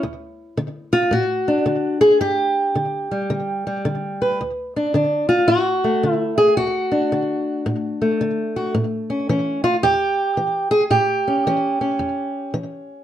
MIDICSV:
0, 0, Header, 1, 2, 480
1, 0, Start_track
1, 0, Key_signature, 2, "major"
1, 0, Tempo, 543478
1, 32, Time_signature, 4, 2, 24, 8
1, 11516, End_track
2, 0, Start_track
2, 0, Title_t, "Steel-string acoustic guitar"
2, 0, Program_c, 0, 25
2, 29, Note_on_c, 0, 38, 69
2, 477, Note_off_c, 0, 38, 0
2, 507, Note_on_c, 0, 50, 69
2, 819, Note_on_c, 0, 65, 92
2, 957, Note_off_c, 0, 50, 0
2, 980, Note_on_c, 0, 45, 63
2, 994, Note_off_c, 0, 65, 0
2, 994, Note_on_c, 0, 66, 83
2, 1306, Note_on_c, 0, 62, 48
2, 1434, Note_off_c, 0, 45, 0
2, 1464, Note_on_c, 0, 50, 73
2, 1771, Note_off_c, 0, 66, 0
2, 1775, Note_on_c, 0, 68, 91
2, 1917, Note_off_c, 0, 50, 0
2, 1947, Note_off_c, 0, 68, 0
2, 1949, Note_on_c, 0, 43, 79
2, 1951, Note_on_c, 0, 67, 89
2, 2401, Note_off_c, 0, 43, 0
2, 2433, Note_on_c, 0, 50, 65
2, 2747, Note_off_c, 0, 62, 0
2, 2750, Note_on_c, 0, 55, 44
2, 2883, Note_off_c, 0, 50, 0
2, 2914, Note_on_c, 0, 50, 70
2, 3230, Note_off_c, 0, 55, 0
2, 3239, Note_on_c, 0, 55, 46
2, 3364, Note_off_c, 0, 50, 0
2, 3397, Note_off_c, 0, 67, 0
2, 3401, Note_on_c, 0, 50, 72
2, 3724, Note_on_c, 0, 71, 49
2, 3848, Note_off_c, 0, 50, 0
2, 3869, Note_off_c, 0, 71, 0
2, 3888, Note_off_c, 0, 55, 0
2, 3892, Note_on_c, 0, 38, 68
2, 4208, Note_on_c, 0, 62, 46
2, 4334, Note_off_c, 0, 38, 0
2, 4364, Note_on_c, 0, 50, 70
2, 4370, Note_off_c, 0, 62, 0
2, 4373, Note_on_c, 0, 62, 50
2, 4666, Note_off_c, 0, 62, 0
2, 4669, Note_on_c, 0, 65, 87
2, 4810, Note_off_c, 0, 50, 0
2, 4837, Note_on_c, 0, 66, 88
2, 4842, Note_on_c, 0, 45, 60
2, 4844, Note_off_c, 0, 65, 0
2, 5160, Note_on_c, 0, 57, 46
2, 5289, Note_off_c, 0, 45, 0
2, 5329, Note_on_c, 0, 50, 68
2, 5411, Note_off_c, 0, 66, 0
2, 5411, Note_on_c, 0, 64, 88
2, 5628, Note_off_c, 0, 64, 0
2, 5632, Note_on_c, 0, 68, 95
2, 5773, Note_off_c, 0, 50, 0
2, 5799, Note_off_c, 0, 68, 0
2, 5802, Note_on_c, 0, 66, 87
2, 5803, Note_on_c, 0, 38, 70
2, 6108, Note_on_c, 0, 62, 46
2, 6250, Note_off_c, 0, 38, 0
2, 6289, Note_on_c, 0, 50, 66
2, 6733, Note_off_c, 0, 50, 0
2, 6765, Note_on_c, 0, 45, 68
2, 7076, Note_off_c, 0, 57, 0
2, 7079, Note_on_c, 0, 57, 44
2, 7210, Note_off_c, 0, 45, 0
2, 7243, Note_off_c, 0, 66, 0
2, 7249, Note_on_c, 0, 50, 65
2, 7563, Note_on_c, 0, 66, 49
2, 7692, Note_off_c, 0, 50, 0
2, 7702, Note_off_c, 0, 62, 0
2, 7710, Note_off_c, 0, 66, 0
2, 7724, Note_on_c, 0, 45, 77
2, 8036, Note_on_c, 0, 61, 42
2, 8169, Note_off_c, 0, 45, 0
2, 8205, Note_off_c, 0, 61, 0
2, 8208, Note_on_c, 0, 52, 73
2, 8209, Note_on_c, 0, 61, 49
2, 8509, Note_off_c, 0, 61, 0
2, 8512, Note_on_c, 0, 65, 86
2, 8616, Note_off_c, 0, 65, 0
2, 8651, Note_off_c, 0, 52, 0
2, 8684, Note_on_c, 0, 67, 99
2, 8692, Note_on_c, 0, 40, 60
2, 8710, Note_off_c, 0, 57, 0
2, 9132, Note_off_c, 0, 40, 0
2, 9160, Note_on_c, 0, 52, 60
2, 9455, Note_off_c, 0, 67, 0
2, 9459, Note_on_c, 0, 68, 100
2, 9565, Note_off_c, 0, 68, 0
2, 9606, Note_off_c, 0, 52, 0
2, 9630, Note_on_c, 0, 45, 72
2, 9633, Note_on_c, 0, 67, 93
2, 9958, Note_on_c, 0, 61, 46
2, 10081, Note_off_c, 0, 45, 0
2, 10121, Note_off_c, 0, 61, 0
2, 10129, Note_on_c, 0, 52, 74
2, 10133, Note_on_c, 0, 61, 52
2, 10420, Note_off_c, 0, 61, 0
2, 10430, Note_on_c, 0, 61, 45
2, 10569, Note_off_c, 0, 52, 0
2, 10591, Note_on_c, 0, 40, 66
2, 11039, Note_off_c, 0, 40, 0
2, 11072, Note_off_c, 0, 67, 0
2, 11073, Note_on_c, 0, 52, 62
2, 11516, Note_off_c, 0, 52, 0
2, 11516, Note_off_c, 0, 61, 0
2, 11516, End_track
0, 0, End_of_file